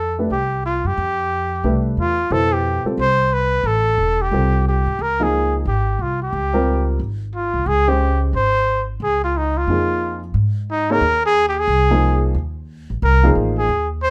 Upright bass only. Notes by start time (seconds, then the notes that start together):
Already playing: F2
0.30 C2
0.84 F#2
0.97 F2
1.64 C2
1.97 E2
2.30 F2
2.85 muted upright bass stroke
2.97 C2
3.63 A1
3.98 E1
4.31 C2
4.86 G#2
4.99 C#2
5.65 G#1
5.99 C2
6.33 C#2
7.00 G#1
7.54 C2
7.66 C#2
8.33 G#1
9.00 C#2
9.67 F2
10.34 G#2
11.01 D#2
11.68 C2
12.35 D#2
12.90 A1
13.02 C2
13.35 A1
13.69 D#2